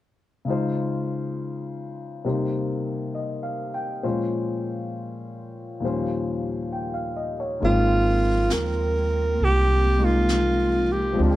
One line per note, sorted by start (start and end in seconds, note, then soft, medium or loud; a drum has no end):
0.45 2.24 C#3 soft
0.45 2.25 G#3 soft
0.45 2.25 D#4 soft
0.49 2.27 F4 soft
0.49 2.24 C5 soft
2.25 4.03 C3 soft
2.25 4.04 G3 soft
2.25 4.04 A#3 soft
2.25 4.04 D#4 soft
2.25 4.02 C5 soft
3.15 3.70 D#5 soft
3.43 3.90 F5 soft
3.74 4.20 G5 soft
4.03 5.80 A#2 soft
4.03 5.81 F3 soft
4.03 5.83 G#3 soft
4.03 5.83 C#4 soft
4.03 5.82 C5 soft
5.80 7.60 D#2 soft
5.80 7.61 A#2 soft
5.80 7.61 F3 soft
5.80 7.62 G3 soft
5.85 7.63 C#4 soft
5.85 7.63 C5 soft
6.72 7.14 G5 soft
6.94 7.32 F5 soft
7.16 7.44 D#5 soft
7.40 7.71 C#5 soft
7.60 8.47 G#1 medium
7.60 11.18 D#3 soft
7.60 11.36 F3 medium
7.60 9.97 G#3 soft
7.60 11.36 G#3 medium
7.60 9.99 A#3 soft
7.60 11.16 A#3 soft
7.60 11.36 C4 medium
7.60 11.17 C4 soft
7.60 brush sweep soft
7.65 11.20 F4 soft
7.65 8.54 F4 medium
8.50 9.37 D#2 soft
8.50 9.46 A#4 medium
8.50 snare soft
8.50 hi-hat pedal soft
9.40 11.15 C2 medium
9.40 brush sweep soft
9.44 10.06 G4 medium
9.98 11.14 G#3 soft
9.98 11.19 A#3 soft
9.98 11.19 D#4 soft
10.05 10.94 F4 medium
10.29 snare soft
10.29 hi-hat pedal soft
10.92 11.20 G4 medium
11.13 11.36 F3 soft
11.13 11.36 G#3 soft
11.18 11.36 D2 medium
11.18 11.36 C4 soft
11.18 11.36 D4 soft
11.18 brush sweep soft
11.24 11.36 F4 soft
11.24 11.36 G#4 medium